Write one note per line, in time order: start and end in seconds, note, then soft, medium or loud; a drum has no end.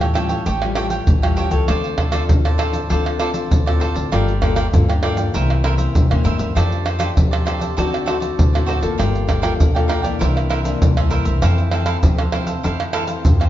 0.00 0.38 A2 medium
0.00 0.43 E3 medium
0.00 0.13 A4 soft
0.00 0.14 C#5 soft
0.00 0.14 G5 medium
0.00 pandeiro soft
0.00 tamborim medium
0.00 shaker soft
0.14 0.44 G3 medium
0.14 0.45 C#4 medium
0.14 0.45 F4 medium
0.14 0.29 G4 medium
0.14 0.29 A4 medium
0.14 0.28 C#5 medium
0.14 0.27 G5 medium
0.14 pandeiro medium
0.14 tamborim medium
0.14 shaker medium
0.29 0.45 A4 soft
0.29 0.45 C#5 soft
0.29 0.44 G5 soft
0.29 pandeiro medium
0.29 shaker medium
0.46 0.99 A1 medium
0.46 1.04 A2 medium
0.46 0.75 G4 medium
0.46 0.75 A4 medium
0.46 0.76 C#5 medium
0.46 0.76 G5 medium
0.46 pandeiro medium
0.46 shaker medium
0.46 surdo medium
0.62 0.73 G3 medium
0.62 0.73 C#4 medium
0.62 0.73 F4 medium
0.62 pandeiro soft
0.62 tamborim medium
0.62 shaker soft
0.75 1.05 G3 medium
0.75 1.05 C#4 medium
0.75 1.05 F4 medium
0.75 0.86 G4 medium
0.75 0.86 A4 medium
0.75 0.86 C#5 medium
0.75 0.86 G5 medium
0.75 pandeiro medium
0.75 tamborim medium
0.90 1.21 A4 soft
0.90 1.21 C#5 soft
0.90 1.21 G5 medium
0.90 pandeiro medium
0.90 shaker medium
1.06 1.47 A1 medium
1.06 1.65 E3 medium
1.06 pandeiro medium
1.06 shaker medium
1.06 surdo loud
1.22 1.48 G3 medium
1.22 1.48 C#4 medium
1.22 1.49 F4 medium
1.22 1.36 A4 soft
1.22 1.36 C#5 soft
1.22 1.37 G5 soft
1.22 pandeiro soft
1.22 tamborim medium
1.22 shaker soft
1.36 1.51 G4 medium
1.36 1.51 A4 medium
1.36 1.51 C#5 medium
1.36 1.50 G5 medium
1.36 pandeiro medium
1.50 1.65 C#2 loud
1.50 1.93 C4 medium
1.50 1.93 F4 medium
1.50 1.93 A4 medium
1.50 1.67 A4 soft
1.50 1.67 C#5 soft
1.50 1.66 G5 medium
1.50 pandeiro medium
1.50 shaker medium
1.67 2.20 D2 loud
1.67 2.26 D3 medium
1.67 1.96 F4 medium
1.67 1.97 A4 medium
1.67 1.98 C5 medium
1.67 1.98 D5 medium
1.67 pandeiro medium
1.67 tamborim medium
1.67 shaker medium
1.67 surdo medium
1.84 pandeiro soft
1.84 shaker soft
1.97 2.11 F4 soft
1.97 2.11 A4 medium
1.97 2.11 C5 medium
1.97 2.12 D5 medium
1.97 pandeiro medium
1.97 tamborim medium
1.97 surdo medium
2.11 2.54 C4 medium
2.11 2.54 F4 medium
2.11 2.22 F4 medium
2.11 2.22 A4 medium
2.11 2.54 A4 medium
2.11 2.22 C5 medium
2.11 2.23 D5 medium
2.11 pandeiro medium
2.11 tamborim medium
2.11 shaker medium
2.29 2.87 A2 medium
2.29 2.81 D3 medium
2.29 pandeiro medium
2.29 shaker medium
2.29 surdo loud
2.45 2.57 A4 soft
2.45 2.58 C5 soft
2.45 2.58 D5 medium
2.45 pandeiro soft
2.45 tamborim medium
2.45 shaker soft
2.58 2.77 C4 medium
2.58 2.73 F4 medium
2.58 2.77 F4 medium
2.58 2.73 A4 medium
2.58 2.78 A4 medium
2.58 2.73 C5 medium
2.58 2.72 D5 medium
2.58 pandeiro medium
2.58 tamborim medium
2.73 2.89 A4 soft
2.73 2.89 C5 soft
2.73 2.88 D5 medium
2.73 pandeiro medium
2.73 shaker medium
2.89 3.42 D2 medium
2.89 3.48 D3 medium
2.89 3.16 C4 medium
2.89 3.18 F4 medium
2.89 3.16 F4 medium
2.89 3.18 A4 medium
2.89 3.17 A4 medium
2.89 3.19 C5 medium
2.89 3.19 D5 medium
2.89 pandeiro medium
2.89 shaker medium
2.89 surdo medium
3.06 pandeiro soft
3.06 tamborim medium
3.06 shaker soft
3.19 3.61 C4 soft
3.19 3.29 F4 medium
3.19 3.61 F4 medium
3.19 3.29 A4 medium
3.19 3.61 A4 medium
3.19 3.29 C5 medium
3.19 3.29 D5 medium
3.19 pandeiro medium
3.19 tamborim medium
3.19 shaker medium
3.34 3.65 A4 soft
3.34 3.65 C5 soft
3.34 3.64 D5 soft
3.34 pandeiro medium
3.34 shaker medium
3.51 3.90 D2 medium
3.51 4.09 A2 medium
3.51 pandeiro medium
3.51 shaker medium
3.51 surdo loud
3.66 4.08 C4 medium
3.66 4.08 F4 medium
3.66 3.80 A4 soft
3.66 4.08 A4 medium
3.66 3.80 C5 soft
3.66 3.80 D5 medium
3.66 pandeiro soft
3.66 tamborim medium
3.66 shaker soft
3.80 3.95 F4 medium
3.80 3.95 A4 medium
3.80 3.94 C5 medium
3.80 3.93 D5 medium
3.80 pandeiro medium
3.94 4.09 D2 loud
3.94 4.10 A4 soft
3.94 4.10 C5 soft
3.94 4.10 D5 medium
3.94 pandeiro medium
3.94 shaker medium
4.12 4.64 G1 loud
4.12 4.70 G3 medium
4.12 4.30 A#3 medium
4.12 4.40 F4 medium
4.12 4.30 F4 medium
4.12 4.31 A4 medium
4.12 4.41 A#4 medium
4.12 4.41 D5 medium
4.12 4.42 G5 medium
4.12 pandeiro medium
4.12 tamborim medium
4.12 shaker medium
4.12 surdo medium
4.28 pandeiro soft
4.28 shaker soft
4.41 4.60 A#3 medium
4.41 4.54 F4 medium
4.41 4.61 F4 medium
4.41 4.61 A4 medium
4.41 4.55 A#4 medium
4.41 4.55 D5 medium
4.41 4.55 G5 medium
4.41 pandeiro medium
4.41 tamborim medium
4.41 surdo medium
4.56 4.66 F4 medium
4.56 4.66 A#4 medium
4.56 4.66 D5 medium
4.56 4.66 G5 medium
4.56 pandeiro medium
4.56 tamborim medium
4.56 shaker medium
4.74 5.25 G2 medium
4.74 5.31 D3 medium
4.74 4.91 A#3 medium
4.74 4.92 F4 medium
4.74 4.92 A4 medium
4.74 pandeiro medium
4.74 shaker medium
4.74 surdo loud
4.89 5.02 A#4 soft
4.89 5.03 D5 soft
4.89 5.02 G5 soft
4.89 pandeiro soft
4.89 tamborim medium
4.89 shaker soft
5.02 5.32 A#3 medium
5.02 5.17 F4 medium
5.02 5.32 F4 medium
5.02 5.32 A4 medium
5.02 5.17 A#4 medium
5.02 5.17 D5 medium
5.02 5.16 G5 medium
5.02 pandeiro medium
5.02 tamborim medium
5.17 5.33 A#4 soft
5.17 5.32 D5 soft
5.17 5.32 G5 soft
5.17 pandeiro medium
5.17 shaker medium
5.34 5.86 C2 medium
5.34 5.92 C3 medium
5.34 5.60 E3 medium
5.34 5.60 A#3 medium
5.34 5.61 C#4 medium
5.34 5.63 E4 medium
5.34 5.63 A#4 medium
5.34 5.63 C5 medium
5.34 5.63 E5 medium
5.34 pandeiro medium
5.34 shaker medium
5.34 surdo medium
5.50 pandeiro soft
5.50 tamborim medium
5.50 shaker soft
5.64 6.05 E3 medium
5.64 6.05 A#3 medium
5.64 6.05 C#4 medium
5.64 5.73 E4 medium
5.64 5.73 A#4 medium
5.64 5.73 C5 medium
5.64 5.73 E5 medium
5.64 pandeiro medium
5.64 tamborim medium
5.77 6.09 A#4 soft
5.77 6.08 C5 soft
5.77 6.08 E5 soft
5.77 pandeiro medium
5.77 shaker medium
5.95 6.53 G2 medium
5.95 6.09 C3 medium
5.95 pandeiro medium
5.95 shaker medium
5.95 surdo loud
6.11 6.24 A#2 medium
6.11 6.52 E3 medium
6.11 6.52 A#3 medium
6.11 6.52 C#4 medium
6.11 6.23 A#4 soft
6.11 6.24 C5 soft
6.11 6.24 E5 medium
6.11 pandeiro soft
6.11 tamborim medium
6.11 shaker soft
6.24 6.39 A2 medium
6.24 6.39 E4 medium
6.24 6.39 A#4 medium
6.24 6.38 C5 medium
6.24 6.37 E5 medium
6.24 pandeiro medium
6.24 shaker medium
6.38 6.54 G2 medium
6.38 6.54 A#4 soft
6.38 6.54 C5 soft
6.38 6.53 E5 soft
6.38 pandeiro medium
6.38 shaker medium
6.55 7.08 F2 medium
6.55 7.14 F3 medium
6.55 6.97 A3 medium
6.55 6.97 D4 medium
6.55 6.84 F4 medium
6.55 6.97 G4 medium
6.55 6.84 A4 medium
6.55 6.85 C5 medium
6.55 6.86 D5 medium
6.55 pandeiro medium
6.55 tamborim medium
6.55 shaker medium
6.55 surdo medium
6.72 pandeiro soft
6.72 shaker soft
6.85 6.97 F4 soft
6.85 6.98 A4 soft
6.85 6.98 C5 medium
6.85 6.98 D5 medium
6.85 pandeiro medium
6.85 tamborim medium
6.99 7.41 A3 medium
6.99 7.42 D4 medium
6.99 7.09 F4 medium
6.99 7.42 G4 medium
6.99 7.09 A4 medium
6.99 7.09 C5 medium
6.99 7.09 D5 medium
6.99 pandeiro medium
6.99 tamborim medium
6.99 shaker medium
7.17 7.75 C3 medium
7.17 7.69 F3 medium
7.17 pandeiro medium
7.17 shaker medium
7.17 surdo loud
7.31 7.45 A4 soft
7.31 7.45 C5 soft
7.31 7.46 D5 soft
7.31 pandeiro soft
7.31 tamborim medium
7.31 shaker soft
7.45 7.72 A3 medium
7.45 7.73 D4 medium
7.45 7.60 F4 medium
7.45 7.73 G4 medium
7.45 7.60 A4 medium
7.45 7.59 C5 medium
7.45 7.58 D5 medium
7.45 pandeiro medium
7.45 tamborim medium
7.45 shaker medium
7.60 7.76 A4 soft
7.60 7.75 C5 soft
7.60 7.75 D5 soft
7.60 pandeiro medium
7.60 shaker medium
7.77 8.29 D2 medium
7.77 8.36 D3 medium
7.77 8.03 C4 medium
7.77 8.04 D#4 medium
7.77 8.05 F#4 medium
7.77 8.04 F#4 medium
7.77 8.05 A4 medium
7.77 8.05 C5 medium
7.77 8.06 D5 medium
7.77 pandeiro medium
7.77 shaker medium
7.77 surdo medium
7.94 pandeiro soft
7.94 tamborim medium
7.94 shaker soft
8.06 8.48 C4 medium
8.06 8.49 D#4 medium
8.06 8.16 F#4 medium
8.06 8.49 F#4 medium
8.06 8.16 A4 medium
8.06 8.16 C5 medium
8.06 8.16 D5 medium
8.06 pandeiro medium
8.06 tamborim medium
8.20 8.52 A4 soft
8.20 8.51 C5 soft
8.20 8.51 D5 medium
8.20 pandeiro medium
8.20 shaker medium
8.38 8.77 D2 medium
8.38 8.96 A2 medium
8.38 pandeiro medium
8.38 shaker medium
8.38 surdo loud
8.53 8.80 C4 medium
8.53 8.80 D#4 medium
8.53 8.80 F#4 medium
8.53 8.66 A4 soft
8.53 8.66 C5 soft
8.53 8.67 D5 soft
8.53 pandeiro soft
8.53 tamborim medium
8.53 shaker soft
8.66 8.82 F#4 medium
8.66 8.81 A4 medium
8.66 8.81 C5 medium
8.66 8.80 D5 medium
8.66 pandeiro medium
8.81 8.96 A1 medium
8.81 9.39 A#3 medium
8.81 9.39 F4 medium
8.81 8.97 A4 soft
8.81 9.40 A4 medium
8.81 8.97 C5 soft
8.81 8.97 D5 medium
8.81 pandeiro medium
8.81 shaker medium
8.98 9.51 G1 medium
8.98 9.57 G3 medium
8.98 9.26 F4 medium
8.98 9.27 A#4 medium
8.98 9.27 D5 medium
8.98 9.28 G5 medium
8.98 pandeiro medium
8.98 tamborim medium
8.98 shaker medium
8.98 surdo medium
9.15 pandeiro soft
9.15 shaker soft
9.27 9.41 F4 soft
9.27 9.41 A#4 medium
9.27 9.41 D5 medium
9.27 9.42 G5 medium
9.27 pandeiro medium
9.27 tamborim medium
9.27 shaker medium
9.27 surdo medium
9.42 9.70 A#3 medium
9.42 9.52 F4 medium
9.42 9.70 F4 medium
9.42 9.70 A4 medium
9.42 9.53 A#4 medium
9.42 9.53 D5 medium
9.42 9.53 G5 medium
9.42 pandeiro medium
9.42 tamborim medium
9.42 shaker medium
9.60 10.12 B1 medium
9.60 10.18 D3 medium
9.60 pandeiro medium
9.60 shaker medium
9.60 surdo loud
9.75 10.01 A#3 medium
9.75 10.01 F4 medium
9.75 10.02 A4 medium
9.75 9.88 A#4 soft
9.75 9.88 D5 soft
9.75 9.89 G5 medium
9.75 pandeiro soft
9.75 tamborim medium
9.75 shaker soft
9.88 10.03 F4 medium
9.88 10.02 A#4 medium
9.88 10.02 D5 medium
9.88 10.01 G5 medium
9.88 pandeiro medium
9.88 tamborim medium
10.02 10.61 E3 medium
10.02 10.61 A#3 medium
10.02 10.61 D4 medium
10.02 10.19 A#4 soft
10.02 10.18 D5 soft
10.02 10.18 G5 soft
10.02 pandeiro medium
10.02 shaker medium
10.19 10.73 C2 medium
10.19 10.79 C3 medium
10.19 10.48 E4 medium
10.19 10.49 A#4 medium
10.19 10.49 C5 medium
10.19 10.49 E5 medium
10.19 pandeiro medium
10.19 shaker medium
10.19 surdo medium
10.37 pandeiro soft
10.37 tamborim medium
10.37 shaker soft
10.50 10.59 E4 medium
10.50 10.60 A#4 medium
10.50 10.60 C5 medium
10.50 10.60 E5 medium
10.50 pandeiro medium
10.50 tamborim medium
10.63 10.91 E3 medium
10.63 10.91 A#3 medium
10.63 10.92 D4 medium
10.63 10.95 A#4 soft
10.63 10.95 C5 soft
10.63 10.94 E5 soft
10.63 pandeiro medium
10.63 shaker medium
10.82 11.21 C2 medium
10.82 11.40 G2 medium
10.82 pandeiro medium
10.82 shaker medium
10.82 surdo loud
10.97 11.38 E3 medium
10.97 11.38 A#3 medium
10.97 11.38 D4 medium
10.97 11.10 A#4 soft
10.97 11.10 C5 soft
10.97 11.10 E5 medium
10.97 pandeiro soft
10.97 tamborim medium
10.97 shaker soft
11.10 11.25 E4 medium
11.10 11.26 A#4 medium
11.10 11.25 C5 medium
11.10 11.24 E5 medium
11.10 pandeiro medium
11.10 shaker medium
11.25 11.40 C2 medium
11.25 11.41 A#4 soft
11.25 11.41 C5 medium
11.25 11.40 E5 medium
11.25 pandeiro medium
11.25 shaker medium
11.42 12.00 F2 medium
11.42 11.95 F2 loud
11.42 11.68 E3 medium
11.42 11.68 A3 medium
11.42 11.69 C4 medium
11.42 11.70 E4 medium
11.42 11.71 A4 medium
11.42 11.72 C5 medium
11.42 11.72 F5 medium
11.42 pandeiro medium
11.42 tamborim medium
11.42 shaker medium
11.42 surdo medium
11.58 pandeiro soft
11.58 shaker soft
11.71 11.98 E3 medium
11.71 11.99 A3 medium
11.71 11.99 C4 medium
11.71 11.84 E4 medium
11.71 11.85 A4 soft
11.71 11.85 C5 medium
11.71 11.85 F5 medium
11.71 pandeiro medium
11.71 tamborim medium
11.86 11.96 E4 medium
11.86 11.96 A4 medium
11.86 11.96 C5 medium
11.86 11.96 F5 medium
11.86 pandeiro medium
11.86 tamborim medium
11.86 shaker medium
12.03 12.62 C3 medium
12.03 12.22 E3 medium
12.03 12.56 F3 loud
12.03 12.22 A3 medium
12.03 12.22 C4 medium
12.03 pandeiro medium
12.03 shaker medium
12.03 surdo loud
12.18 12.32 A4 soft
12.18 12.32 C5 soft
12.18 12.33 F5 soft
12.18 pandeiro soft
12.18 tamborim medium
12.18 shaker soft
12.32 12.73 A3 medium
12.32 12.73 C4 medium
12.32 12.47 E4 medium
12.32 12.47 A4 medium
12.32 12.46 C5 medium
12.32 12.46 F5 medium
12.32 pandeiro medium
12.32 tamborim medium
12.47 12.63 A4 soft
12.47 12.62 C5 soft
12.47 12.62 F5 soft
12.47 pandeiro medium
12.47 shaker medium
12.63 13.22 F2 medium
12.63 13.16 F2 medium
12.63 12.92 E4 medium
12.63 12.92 A4 medium
12.63 12.93 C5 medium
12.63 12.93 F5 medium
12.63 pandeiro medium
12.63 shaker medium
12.63 surdo medium
12.80 pandeiro soft
12.80 tamborim medium
12.80 shaker soft
12.93 13.23 E3 medium
12.93 13.23 A3 medium
12.93 13.23 C4 medium
12.93 13.03 E4 medium
12.93 13.03 A4 medium
12.93 13.03 C5 medium
12.93 13.03 F5 medium
12.93 pandeiro medium
12.93 tamborim medium
13.07 13.39 A4 soft
13.07 13.38 C5 medium
13.07 13.38 F5 medium
13.07 pandeiro medium
13.07 shaker medium
13.25 13.49 F2 medium
13.25 13.49 C3 medium
13.25 pandeiro medium
13.25 shaker medium
13.25 surdo loud
13.40 13.49 E3 medium
13.40 13.49 A3 medium
13.40 13.49 C4 medium
13.40 13.49 A4 soft
13.40 13.49 C5 soft
13.40 13.49 F5 soft
13.40 pandeiro soft
13.40 tamborim medium
13.40 shaker soft